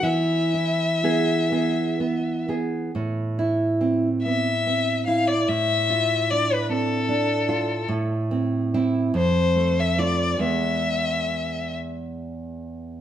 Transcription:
<<
  \new Staff \with { instrumentName = "Violin" } { \time 6/8 \key a \minor \tempo 4. = 46 e''2~ e''8 r8 | r4. e''4 f''16 d''16 | e''4 d''16 b'16 a'4. | r4. c''8. e''16 d''8 |
e''4. r4. | }
  \new Staff \with { instrumentName = "Nylon-string guitar" } { \time 6/8 \key a \minor e8 e'8 <b gis'>8 <b gis'>8 b8 <b gis'>8 | a,8 e'8 c'8 b8 c'8 e'8 | a,8 f'8 d'8 c'8 d'8 f'8 | a,8 c'8 <c' e'>8 f,8 a8 <a f'>8 |
<e, gis b>2. | }
>>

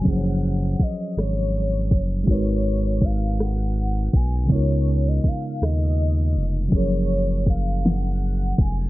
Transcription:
<<
  \new Staff \with { instrumentName = "Soft synth lead" } { \time 6/8 \key fis \major \tempo 4. = 54 fis''4 dis''8 cis''4 r8 | cis''4 eis''8 fis''4 gis''8 | cis''8. dis''16 eis''8 dis''4 r8 | cis''4 eis''8 fis''4 gis''8 | }
  \new Staff \with { instrumentName = "Tine electric piano" } { \time 6/8 \key fis \major <eis fis cis' gis' bis' cis''>2. | <gis dis' fis' ais' b'>2. | <cis gis b dis' eis' ais'>2. | <eis fis cis' gis' ais'>2. | }
  \new Staff \with { instrumentName = "Analog synth bass" } { \clef bass \time 6/8 \key fis \major fis,,4 gis,,8 gis,,4 fis,,8 | gis,,2~ gis,,8 b,,8 | cis,4 dis,8 dis,4 eis,,8 | fis,,2~ fis,,8 eis,,8 | }
  \new DrumStaff \with { instrumentName = "Drums" } \drummode { \time 6/8 <hh bd>4 <hh bd>8 <hh ss>4 <hh bd>8 | <hh bd>4 <hh bd>8 <hh ss>4 <hh bd>8 | <hh bd>4 <hh bd>8 <hh ss>4 hh8 | <hh bd>4 <hh bd>8 <hh sn>4 <hh bd>8 | }
>>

